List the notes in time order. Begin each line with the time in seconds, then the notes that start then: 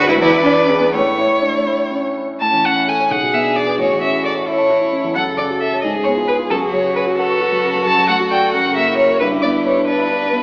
Already playing: D2 D4 F#4 B4
0.00 B4
0.08 E4
0.20 E2 E4 B4 D5
0.43 D4
0.68 C#4 G#4 B4
0.80 B3
0.92 A2 A3 C#5
1.18 E4
1.42 D4
1.67 E4
1.91 C#4
2.17 E4
2.40 A2 C#4 A5
2.53 E3
2.64 C#4 F#5
2.76 E4
2.88 A4 G#5
3.00 C#5
3.10 B1 G#4 F#5
3.23 B2
3.34 B3 E5
3.44 D4
3.56 G#4 D5
3.67 B4
3.78 A1 F#4 C#5
3.89 E2
4.01 C#4 E5
4.12 E4
4.23 A4 D5
4.35 C#5
4.46 E4 A4 C#5 E5
4.58 A5
4.69 F#4 C#5
4.81 E4
4.93 C#4 E4
5.04 E2
5.15 F#2 A4 F#5
5.27 C#3
5.37 C#4 D5
5.50 F#4
5.60 A4 E5
5.73 C#5
5.81 G#2 G#4 D#5
5.95 G#3
6.04 B3 C#5
6.17 F4
6.28 B4
6.39 F4
6.50 F#2 F#4 A4
6.62 C#3
6.73 F#3 C#5
6.85 F#4
6.95 B4 C#5
7.07 F#4
7.17 A4 B4 F#5
7.30 C#6
7.41 F#4
7.52 F#3
7.63 C#3
7.74 F#3
7.85 F#2 A4 A5
7.98 F#3
8.08 A3 F#5
8.20 F#4
8.31 D5 G5
8.43 A4
8.53 F#2 A#4 F#5
8.66 C#3
8.76 A#3 E5
8.88 E4
8.97 C#5
9.10 A#4
9.20 G2 E4 G4 B4
9.32 D3
9.42 B3 D5
9.55 D4
9.65 B4 C#5
9.78 D4
9.87 D4 E4 B4 D5
10.00 B5
10.11 D4 B4
10.22 D4
10.32 B3 E4